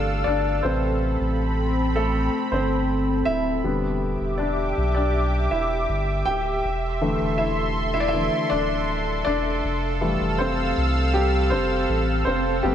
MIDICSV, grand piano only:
0, 0, Header, 1, 2, 480
1, 0, Start_track
1, 0, Tempo, 750000
1, 410, Time_signature, 4, 2, 24, 8
1, 8159, End_track
2, 0, Start_track
2, 0, Title_t, "Grand piano"
2, 0, Program_c, 0, 0
2, 0, Control_c, 0, 64, 127
2, 0, Note_on_c, 0, 52, 49
2, 0, Note_on_c, 0, 55, 41
2, 0, Note_on_c, 0, 57, 66
2, 0, Note_on_c, 0, 62, 68
2, 0, Note_on_c, 0, 69, 78
2, 0, Note_on_c, 0, 74, 94
2, 137, Note_off_c, 0, 74, 0
2, 149, Note_off_c, 0, 62, 0
2, 155, Note_on_c, 0, 74, 84
2, 175, Note_on_c, 0, 62, 64
2, 396, Note_off_c, 0, 62, 0
2, 401, Note_on_c, 0, 72, 73
2, 409, Note_off_c, 0, 74, 0
2, 411, Note_on_c, 0, 48, 47
2, 414, Note_off_c, 0, 57, 0
2, 414, Note_on_c, 0, 57, 42
2, 418, Note_on_c, 0, 60, 59
2, 419, Note_off_c, 0, 55, 0
2, 419, Note_off_c, 0, 69, 0
2, 419, Control_c, 0, 64, 0
2, 420, Note_on_c, 0, 71, 52
2, 423, Note_off_c, 0, 52, 0
2, 526, Control_c, 0, 64, 127
2, 729, Note_off_c, 0, 48, 0
2, 731, Note_off_c, 0, 57, 0
2, 734, Note_off_c, 0, 71, 0
2, 979, Note_off_c, 0, 72, 0
2, 988, Note_off_c, 0, 60, 0
2, 1252, Note_on_c, 0, 69, 84
2, 1258, Note_on_c, 0, 57, 54
2, 1589, Note_off_c, 0, 57, 0
2, 1611, Note_on_c, 0, 72, 71
2, 1621, Note_off_c, 0, 69, 0
2, 1623, Note_on_c, 0, 60, 58
2, 2071, Note_off_c, 0, 60, 0
2, 2083, Note_on_c, 0, 76, 93
2, 2093, Note_on_c, 0, 64, 65
2, 2105, Note_off_c, 0, 72, 0
2, 2329, Note_on_c, 0, 50, 44
2, 2332, Note_on_c, 0, 55, 40
2, 2337, Control_c, 0, 64, 0
2, 2337, Note_on_c, 0, 59, 50
2, 2441, Control_c, 0, 64, 127
2, 2540, Note_off_c, 0, 76, 0
2, 2546, Note_off_c, 0, 64, 0
2, 2801, Note_on_c, 0, 74, 60
2, 2811, Note_on_c, 0, 62, 53
2, 3140, Note_off_c, 0, 74, 0
2, 3145, Note_off_c, 0, 62, 0
2, 3165, Note_on_c, 0, 74, 69
2, 3177, Note_on_c, 0, 62, 51
2, 3502, Note_off_c, 0, 74, 0
2, 3508, Note_off_c, 0, 62, 0
2, 3526, Note_on_c, 0, 76, 77
2, 3532, Note_on_c, 0, 64, 62
2, 3985, Note_off_c, 0, 64, 0
2, 4003, Note_on_c, 0, 79, 94
2, 4012, Note_on_c, 0, 67, 61
2, 4022, Note_off_c, 0, 76, 0
2, 4224, Note_off_c, 0, 50, 0
2, 4225, Note_off_c, 0, 55, 0
2, 4228, Note_off_c, 0, 59, 0
2, 4258, Control_c, 0, 64, 0
2, 4386, Control_c, 0, 64, 127
2, 4461, Note_off_c, 0, 79, 0
2, 4465, Note_off_c, 0, 67, 0
2, 4487, Note_on_c, 0, 50, 49
2, 4488, Note_on_c, 0, 52, 43
2, 4492, Note_on_c, 0, 57, 52
2, 4722, Note_on_c, 0, 76, 78
2, 4726, Note_on_c, 0, 64, 66
2, 4808, Note_off_c, 0, 50, 0
2, 4808, Note_off_c, 0, 52, 0
2, 4810, Note_off_c, 0, 57, 0
2, 5063, Note_off_c, 0, 64, 0
2, 5070, Note_off_c, 0, 76, 0
2, 5080, Note_on_c, 0, 76, 83
2, 5084, Note_on_c, 0, 64, 73
2, 5121, Note_on_c, 0, 74, 83
2, 5128, Note_off_c, 0, 64, 0
2, 5131, Note_off_c, 0, 76, 0
2, 5173, Note_off_c, 0, 74, 0
2, 5173, Note_on_c, 0, 76, 92
2, 5180, Note_on_c, 0, 64, 70
2, 5204, Note_on_c, 0, 50, 45
2, 5206, Note_on_c, 0, 52, 40
2, 5209, Note_on_c, 0, 57, 48
2, 5422, Note_off_c, 0, 50, 0
2, 5424, Note_off_c, 0, 52, 0
2, 5425, Note_off_c, 0, 57, 0
2, 5431, Note_off_c, 0, 64, 0
2, 5438, Note_on_c, 0, 74, 89
2, 5447, Note_on_c, 0, 62, 68
2, 5455, Note_off_c, 0, 76, 0
2, 5903, Note_off_c, 0, 62, 0
2, 5908, Note_off_c, 0, 74, 0
2, 5917, Note_on_c, 0, 74, 94
2, 5929, Note_on_c, 0, 62, 72
2, 6177, Control_c, 0, 64, 0
2, 6292, Control_c, 0, 64, 127
2, 6406, Note_on_c, 0, 52, 46
2, 6407, Note_on_c, 0, 55, 44
2, 6411, Note_on_c, 0, 57, 50
2, 6623, Note_off_c, 0, 62, 0
2, 6646, Note_on_c, 0, 72, 80
2, 6658, Note_on_c, 0, 60, 62
2, 6665, Note_off_c, 0, 74, 0
2, 6727, Note_off_c, 0, 52, 0
2, 6727, Note_off_c, 0, 55, 0
2, 6729, Note_off_c, 0, 57, 0
2, 7108, Note_off_c, 0, 60, 0
2, 7127, Note_on_c, 0, 67, 82
2, 7137, Note_on_c, 0, 55, 58
2, 7142, Note_off_c, 0, 72, 0
2, 7357, Note_off_c, 0, 55, 0
2, 7360, Note_on_c, 0, 72, 82
2, 7371, Note_on_c, 0, 60, 63
2, 7375, Note_off_c, 0, 67, 0
2, 7824, Note_off_c, 0, 60, 0
2, 7829, Note_off_c, 0, 72, 0
2, 7839, Note_on_c, 0, 72, 85
2, 7854, Note_on_c, 0, 60, 66
2, 8075, Note_off_c, 0, 60, 0
2, 8082, Note_on_c, 0, 67, 81
2, 8087, Note_on_c, 0, 55, 58
2, 8092, Note_off_c, 0, 72, 0
2, 8093, Note_on_c, 0, 57, 43
2, 8093, Note_on_c, 0, 59, 52
2, 8097, Control_c, 0, 64, 0
2, 8159, Note_off_c, 0, 55, 0
2, 8159, Note_off_c, 0, 57, 0
2, 8159, Note_off_c, 0, 59, 0
2, 8159, Note_off_c, 0, 67, 0
2, 8159, End_track
0, 0, End_of_file